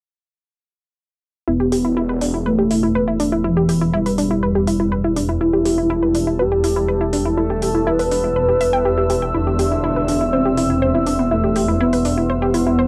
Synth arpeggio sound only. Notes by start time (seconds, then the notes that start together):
1.48 E4
1.60 G4
1.72 G4
1.85 E4
1.97 E4
2.09 B4
2.21 D4
2.34 E4
2.46 B4
2.58 G4
2.70 E4
2.83 E4
2.95 B4
3.08 E4
3.20 D4
3.32 E4
3.44 E4
3.57 G4
3.69 G4
3.81 E4
3.93 E4
4.06 B4
4.18 D4
4.31 E4
4.43 B4
4.55 G4
4.67 E4
4.80 E4
4.92 B4
5.04 E4
5.16 D4
5.29 E4
5.41 E4
5.54 G4
5.66 G4
5.78 E4
5.90 E4
6.03 B4
6.15 D4
6.27 E4
6.39 B4
6.52 G4
6.64 E4
6.76 E4
6.89 B4
7.01 E4
7.13 D4
7.26 E4
7.38 E4
7.50 G4
7.62 G4
7.75 E4
7.87 E4
7.99 B4
8.12 D4
8.24 E4
8.36 B4
8.49 G4
8.61 E5
8.73 G5
8.85 G4
8.98 G4
9.10 G4
9.22 G5
9.34 E4
9.47 G4
9.59 G4
9.72 E4
9.84 E4
9.96 B4
10.08 D4
10.21 E4
10.33 C5
10.45 G4
10.57 E4
10.70 E4
10.82 C5
10.95 E4
11.07 D4
11.19 B3
11.31 E4
11.44 G4
11.56 G4
11.68 E4
11.80 E4
11.93 B4
12.05 D4
12.17 E4
12.30 C5
12.42 G4
12.54 E4
12.67 E4
12.79 C5